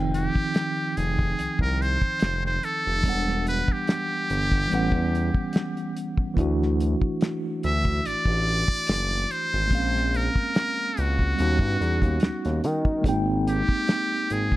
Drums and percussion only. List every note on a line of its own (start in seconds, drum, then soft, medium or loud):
0.14 closed hi-hat medium
0.35 kick medium
0.54 snare medium
0.54 closed hi-hat medium
0.97 closed hi-hat medium
1.19 kick medium
1.39 closed hi-hat medium
1.59 kick medium
1.82 closed hi-hat soft
2.02 kick medium
2.19 snare loud
2.19 closed hi-hat medium
2.46 snare soft
2.63 closed hi-hat medium
3.04 kick medium
3.04 closed hi-hat medium
3.29 snare soft
3.47 closed hi-hat medium
3.68 kick medium
3.87 snare loud
3.87 closed hi-hat medium
4.30 closed hi-hat medium
4.52 kick medium
4.71 closed hi-hat medium
4.92 kick medium
5.15 closed hi-hat soft
5.34 kick medium
5.53 snare loud
5.53 closed hi-hat medium
5.77 closed hi-hat soft
5.97 closed hi-hat medium
6.17 kick medium
6.37 kick medium
6.37 closed hi-hat medium
6.62 snare soft
6.80 closed hi-hat medium
7.02 kick medium
7.21 snare loud
7.21 closed hi-hat medium
7.63 closed hi-hat medium
7.85 kick medium
8.05 closed hi-hat medium
8.25 kick medium
8.49 closed hi-hat soft
8.68 kick medium
8.86 snare loud
8.86 closed hi-hat medium
9.31 closed hi-hat medium
9.71 kick medium
9.71 closed hi-hat medium
9.96 snare soft
10.14 closed hi-hat medium
10.36 kick medium
10.55 snare loud
10.55 closed hi-hat medium
10.97 closed hi-hat medium
11.19 kick medium
11.39 closed hi-hat medium
11.59 kick medium
11.80 snare soft
11.80 closed hi-hat medium
12.02 kick medium
12.02 closed hi-hat soft
12.20 snare loud
12.20 closed hi-hat medium
12.45 snare soft
12.45 closed hi-hat soft
12.64 closed hi-hat medium
12.85 kick medium
13.04 kick medium
13.04 closed hi-hat medium
13.48 closed hi-hat medium
13.69 kick medium
13.87 snare medium
13.87 closed hi-hat medium
14.30 closed hi-hat medium
14.52 kick medium